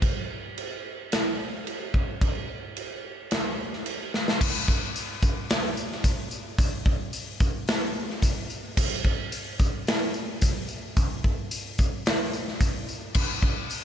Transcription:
0.02 kick medium
0.02 crash medium
0.58 crash medium
1.12 snare loud
1.12 crash medium
1.67 crash medium
1.94 kick medium
2.21 kick loud
2.21 crash soft
2.77 crash medium
3.31 snare loud
3.31 crash medium
3.73 snare soft
3.86 crash medium
4.14 snare medium
4.28 snare medium
4.41 kick loud
4.41 crash loud
4.41 tambourine medium
4.68 kick medium
4.96 open hi-hat medium
4.96 tambourine loud
5.22 kick medium
5.22 tambourine medium
5.50 snare loud
5.50 open hi-hat medium
5.77 tambourine medium
5.92 snare soft
6.04 kick medium
6.04 open hi-hat medium
6.04 tambourine loud
6.31 tambourine medium
6.58 kick loud
6.58 open hi-hat medium
6.58 tambourine medium
6.86 kick medium
7.13 open hi-hat medium
7.13 tambourine medium
7.40 kick medium
7.40 tambourine medium
7.68 snare loud
7.68 open hi-hat medium
8.10 snare soft
8.22 kick medium
8.22 open hi-hat medium
8.22 tambourine loud
8.50 tambourine medium
8.77 kick loud
8.77 tambourine medium
8.77 crash loud
9.05 kick medium
9.32 open hi-hat medium
9.32 tambourine medium
9.59 kick medium
9.59 tambourine medium
9.87 snare loud
9.87 open hi-hat medium
10.14 tambourine medium
10.41 kick medium
10.41 open hi-hat medium
10.41 tambourine loud
10.68 tambourine medium
10.97 kick loud
10.97 open hi-hat medium
10.97 tambourine medium
11.24 kick medium
11.51 open hi-hat medium
11.51 tambourine loud
11.78 kick medium
11.78 tambourine medium
12.06 snare loud
12.06 open hi-hat medium
12.06 tambourine soft
12.33 tambourine medium
12.48 snare soft
12.60 kick medium
12.60 open hi-hat medium
12.60 tambourine medium
12.89 tambourine medium
13.14 kick loud
13.14 crash loud
13.14 tambourine medium
13.42 kick medium
13.70 open hi-hat medium
13.70 tambourine medium

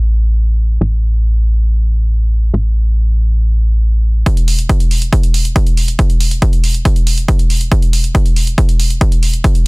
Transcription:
0.00 0.79 A1 medium
0.81 2.51 A1 medium
2.54 4.24 A1 medium
4.26 kick loud
4.26 closed hi-hat medium
4.37 closed hi-hat medium
4.48 open hi-hat loud
4.59 closed hi-hat medium
4.69 kick loud
4.69 closed hi-hat medium
4.80 closed hi-hat medium
4.91 open hi-hat medium
5.02 closed hi-hat medium
5.13 kick loud
5.13 closed hi-hat medium
5.23 closed hi-hat medium
5.34 open hi-hat loud
5.45 closed hi-hat medium
5.56 kick loud
5.56 closed hi-hat medium
5.67 closed hi-hat medium
5.77 open hi-hat medium
5.88 closed hi-hat medium
5.99 kick loud
5.99 closed hi-hat medium
6.10 closed hi-hat soft
6.20 open hi-hat loud
6.31 closed hi-hat medium
6.42 kick loud
6.42 closed hi-hat medium
6.53 closed hi-hat medium
6.64 open hi-hat loud
6.74 closed hi-hat soft
6.85 kick loud
6.85 closed hi-hat medium
6.96 closed hi-hat medium
7.07 open hi-hat loud
7.18 closed hi-hat medium
7.28 kick loud
7.28 closed hi-hat medium
7.39 closed hi-hat medium
7.50 open hi-hat medium
7.61 closed hi-hat medium
7.72 kick loud
7.72 closed hi-hat medium
7.82 closed hi-hat medium
7.93 open hi-hat loud
8.04 closed hi-hat medium
8.15 kick loud
8.15 closed hi-hat medium
8.26 closed hi-hat soft
8.36 open hi-hat loud
8.47 closed hi-hat soft
8.58 kick loud
8.58 closed hi-hat medium
8.69 closed hi-hat medium
8.80 open hi-hat loud
8.90 closed hi-hat soft
9.01 kick loud
9.01 closed hi-hat medium
9.12 closed hi-hat medium
9.23 open hi-hat loud
9.34 closed hi-hat soft
9.44 kick loud
9.44 closed hi-hat medium
9.55 closed hi-hat soft

